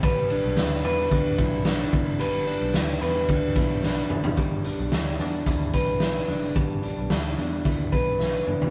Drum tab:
RD |x-x-x-x-x-x-x-x-|x-x-x-x-x-x-----|----------------|----------------|
HH |----------------|----------------|x-x-x-x-x-x-x-o-|x-x-x-x-x-x-----|
SD |----o-------o---|----o-------o---|----o-------o---|----o-------o---|
T2 |----------------|--------------o-|----------------|--------------o-|
FT |----------------|---------------o|----------------|---------------o|
BD |o-------o-o---o-|--------o-o-----|o-------o-o-----|o-------o-o-----|